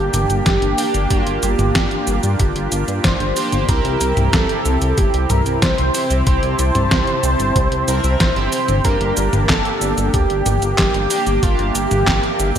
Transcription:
Already playing: analog synth bass G1, analog polysynth A#3 D4 G4, analog synth pad A#3 D4 G4, analog synth lead G4
0.14 analog synth bass G1, closed hi-hat, mid tom, cabasa
0.30 analog synth bass G1, closed hi-hat, cabasa
0.46 analog synth bass G1, analog synth lead G4, kick, snare, closed hi-hat, cabasa
0.62 analog synth bass G1, closed hi-hat
0.78 analog polysynth A#3 D4 G4, open hi-hat, cabasa
0.94 analog synth bass G1, closed hi-hat, cabasa
1.10 analog synth bass G1, analog polysynth A#3 D4 G4, analog synth pad F4, analog synth lead F4, kick, closed hi-hat, cabasa
1.27 analog synth bass G1, closed hi-hat
1.43 analog synth bass G1, analog synth lead G4, closed hi-hat, cabasa
1.59 analog synth bass G1, closed hi-hat, mid tom, cabasa
1.75 analog synth bass G1, kick, snare, closed hi-hat, cabasa
1.91 closed hi-hat
2.07 analog synth bass G1, closed hi-hat, cabasa
2.23 analog synth bass G2, closed hi-hat, cabasa
2.40 analog synth bass G1, kick, closed hi-hat, cabasa
2.56 analog synth bass G1, closed hi-hat
2.72 analog synth bass G1, closed hi-hat, cabasa
2.88 analog synth bass G2, closed hi-hat, cabasa
3.04 analog synth bass G1, analog synth lead C5, kick, snare, closed hi-hat, cabasa
3.20 analog synth bass G1, closed hi-hat
3.36 analog polysynth A#3 D4 G4, open hi-hat, cabasa
3.53 analog synth bass G1, closed hi-hat, mid tom, cabasa
3.69 analog synth bass C2, analog synth pad C3 C4 E4 G4, analog polysynth C4 E4 G4, analog synth lead A#4, kick, closed hi-hat, cabasa
3.85 analog synth bass C2, closed hi-hat
4.01 analog synth bass C2, closed hi-hat, cabasa
4.17 analog synth bass C2, closed hi-hat, mid tom, cabasa
4.33 analog synth bass C2, analog synth lead A4, kick, snare, closed hi-hat, cabasa
4.49 closed hi-hat
4.65 analog synth bass C2, closed hi-hat, cabasa
4.81 analog synth bass C2, closed hi-hat, cabasa
4.98 analog synth bass G1, analog synth lead G4, kick, closed hi-hat, cabasa
5.14 analog synth bass C2, closed hi-hat
5.30 analog synth bass C2, analog synth lead A#4, closed hi-hat, mid tom, cabasa
5.46 analog synth bass C2, closed hi-hat, cabasa
5.62 analog synth bass C2, analog synth lead C5, kick, snare, closed hi-hat, cabasa
5.78 analog synth bass C2, closed hi-hat
5.95 analog polysynth C4 E4 G4, open hi-hat, cabasa
6.10 analog synth bass C2, closed hi-hat, cabasa
6.27 analog synth bass C2, analog polysynth C4 E4 G4, analog synth lead C5, analog synth pad A5, kick, closed hi-hat, cabasa
6.43 analog synth bass C2, closed hi-hat
6.59 analog synth bass C2, closed hi-hat, cabasa
6.75 analog synth bass C2, closed hi-hat, mid tom, cabasa
6.91 analog synth bass C2, kick, snare, closed hi-hat, cabasa
7.07 closed hi-hat
7.23 analog synth bass C2, closed hi-hat, cabasa
7.40 analog synth bass G1, closed hi-hat, cabasa
7.56 analog synth bass C2, kick, closed hi-hat, cabasa
7.72 analog synth bass C2, closed hi-hat
7.88 analog synth bass C2, analog polysynth C4 E4 A#4, closed hi-hat, cabasa
8.04 analog synth bass C2, closed hi-hat, cabasa
8.20 analog synth bass A#1, analog synth lead C5, kick, snare, closed hi-hat, cabasa
8.36 analog synth bass G1, analog polysynth C4 E4 G4, closed hi-hat
8.52 open hi-hat, cabasa
8.69 analog synth bass G1, closed hi-hat, mid tom, cabasa
8.84 analog synth bass G1, analog synth pad A#3 D4 G4, analog polysynth A#3 D4 G4, analog synth lead A#4, kick, closed hi-hat, cabasa
9.01 analog synth bass G1, closed hi-hat
9.17 analog synth bass G1, closed hi-hat, cabasa
9.33 analog synth bass G1, closed hi-hat, mid tom, cabasa
9.49 analog synth bass G1, analog synth lead A4, kick, snare, clap, closed hi-hat, cabasa
9.65 closed hi-hat
9.82 analog synth bass G1, closed hi-hat, cabasa
9.98 analog synth bass G1, closed hi-hat, cabasa
10.14 analog synth bass D2, analog synth lead G4, kick, closed hi-hat, cabasa
10.30 analog synth bass G1, closed hi-hat
10.46 analog synth bass G1, closed hi-hat, mid tom, cabasa
10.62 analog synth bass G1, closed hi-hat, cabasa
10.78 analog synth bass G1, analog synth lead G4, kick, snare, clap, closed hi-hat, cabasa
10.94 analog synth bass G1, closed hi-hat
11.10 analog polysynth A#3 D4 G4, open hi-hat, cabasa
11.27 analog synth bass G1, closed hi-hat, cabasa
11.43 analog synth bass G1, analog polysynth A#3 D4 G4, analog synth lead F4, analog synth pad E5, kick, closed hi-hat, cabasa
11.59 analog synth bass G1, closed hi-hat
11.75 analog synth bass G1, analog synth lead G4, closed hi-hat, cabasa
11.91 analog synth bass G1, closed hi-hat, mid tom, cabasa
12.07 analog synth bass G1, kick, snare, clap, closed hi-hat, cabasa
12.24 closed hi-hat
12.40 analog synth bass G1, closed hi-hat, cabasa

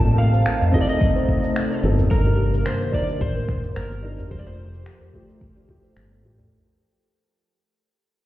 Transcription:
Already playing: fretless electric bass A1, ambient pad C3 A3 D#4, felt piano C4 D#4 A4, electric slide guitar A5
0.06 kalimba A4, shaker
0.18 electric slide guitar F5
0.33 kalimba C5, shaker
0.46 finger snap, shaker
0.61 kalimba D#5, udu, shaker
0.72 felt piano C4 D#4, electric slide guitar D#5, kick
0.76 felt piano A4
0.81 electric slide guitar D5
0.88 kalimba A4, electric slide guitar D#5, shaker
1.01 kick, shaker
1.16 kalimba C5, shaker
1.29 kick
1.43 kalimba D#5, shaker
1.56 finger snap, shaker
1.71 kalimba A4, shaker
1.83 fretless electric bass G1, felt piano C4 D#4 A4
1.98 kalimba A4, udu, shaker
2.09 fretless electric bass G1, ambient pad D#3 A#3, felt piano D4 D#4, electric slide guitar A#4, kick, shaker
2.13 felt piano A#4
2.26 kalimba G4, shaker
2.53 kalimba A#4, shaker
2.66 electric slide guitar C5, finger snap, shaker
2.81 kalimba C5, shaker
2.92 felt piano D4 D#4 A#4, electric slide guitar D5, kick
3.08 kalimba G4, shaker
3.21 fretless electric bass A1, electric slide guitar C5, kick, shaker
3.36 kalimba A#4, shaker
3.49 finger snap, kick
3.63 kalimba C5, udu, shaker
3.76 fretless electric bass G1, electric slide guitar A#4, finger snap, shaker
3.91 kalimba G4, shaker
4.03 felt piano D4 D#4 A#4
4.18 kalimba G4, udu, shaker
4.29 fretless electric bass F1, ambient pad F3 A3 G4, felt piano A3 F4, electric slide guitar C5, kick, shaker
4.34 felt piano G4
4.39 electric slide guitar D5
4.46 kalimba F4, electric slide guitar C5, shaker
4.74 kalimba G4, shaker
4.86 finger snap, shaker
5.01 kalimba A4, udu, shaker
5.13 felt piano A3 F4 G4, kick
5.29 kalimba F4, shaker
5.41 kick, shaker
5.56 kalimba G4, shaker
5.68 felt piano A3 F4 G4, kick
5.84 kalimba C5, shaker
5.96 fretless electric bass G1, finger snap
6.11 kalimba A4, shaker
6.23 fretless electric bass A1, felt piano A3 F4 G4
6.38 kalimba A4, udu, shaker

